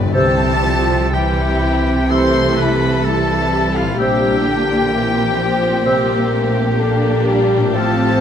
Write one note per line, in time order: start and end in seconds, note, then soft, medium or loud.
0.00 0.19 G2 medium
0.00 3.88 C3 medium
0.00 0.19 D3 soft
0.00 0.51 G3 soft
0.00 0.14 B3 soft
0.00 0.19 B3 soft
0.00 3.85 C4 soft
0.00 0.19 D4 soft
0.00 0.10 G4 soft
0.00 0.17 B4 soft
0.00 0.19 B4 soft
0.00 0.16 D5 medium
0.00 0.19 D5 soft
0.00 3.81 G5 soft
0.06 0.13 G2 loud
0.06 3.89 E4 soft
0.12 3.96 C2 medium
0.12 0.53 C3 medium
0.12 0.60 E3 medium
0.12 1.09 G3 medium
0.12 3.94 G4 soft
0.12 1.15 A4 medium
0.12 0.53 C5 medium
0.12 1.10 A5 loud
0.12 0.61 E6 medium
0.16 3.96 C3 medium
0.16 1.59 C3 medium
0.16 1.11 C4 soft
0.16 1.11 G4 soft
0.62 1.13 F3 medium
1.13 1.60 E3 soft
1.13 1.61 G3 medium
1.13 2.10 E4 medium
1.13 2.12 G4 medium
1.13 2.10 G4 medium
1.13 2.11 G5 medium
1.61 2.08 E3 medium
2.09 2.48 C3 medium
2.09 3.95 E3 medium
2.09 3.04 A3 medium
2.09 3.05 E4 medium
2.09 3.03 G4 medium
2.09 3.97 A4 medium
2.09 2.56 C5 medium
2.09 2.47 C5 medium
2.09 2.58 C6 medium
2.09 2.55 E6 medium
2.57 3.06 B4 medium
2.57 3.07 B5 medium
3.04 3.98 G3 medium
3.04 4.00 E4 medium
3.04 3.78 A4 medium
3.04 3.77 A5 medium
3.08 3.99 E4 soft
3.76 3.99 F4 medium
3.76 4.00 F5 medium
3.81 7.68 A#2 soft
3.86 7.60 C4 soft
3.91 7.73 E4 soft
3.95 7.75 G4 soft
3.95 4.91 G4 medium
3.95 4.42 E6 soft
3.99 7.69 A#1 medium
3.99 7.69 A#2 medium
3.99 4.35 C3 medium
3.99 4.45 G3 medium
3.99 5.84 A#3 medium
3.99 4.92 D4 soft
3.99 7.22 G4 medium
3.99 4.93 G4 medium
3.99 4.35 C5 medium
3.99 7.26 G5 medium
4.46 4.93 D3 medium
4.93 5.39 E3 soft
4.93 6.78 C4 medium
4.93 5.84 G4 medium
4.93 5.39 A#4 medium
5.39 5.85 F3 medium
5.39 5.85 C5 medium
5.85 6.20 C3 medium
5.85 6.31 G3 medium
5.85 6.76 A#3 medium
5.85 8.21 G4 medium
5.85 6.76 A#4 medium
5.85 6.20 C5 medium
5.85 6.28 E6 medium
6.32 6.78 A3 medium
6.79 7.26 A#3 medium
6.79 7.75 A#3 medium
6.79 7.74 D4 medium
6.79 7.26 A4 medium
7.25 7.73 G3 medium
7.25 7.73 G4 medium
7.57 8.21 A2 medium
7.61 8.21 C4 soft
7.66 8.21 F4 soft
7.74 8.21 A1 medium
7.74 8.21 A2 medium
7.74 8.21 F3 medium
7.74 8.21 C4 medium
7.74 8.21 F4 medium
7.74 8.21 A4 medium
7.74 8.21 C5 medium
7.74 8.21 A5 medium
7.74 8.21 F6 medium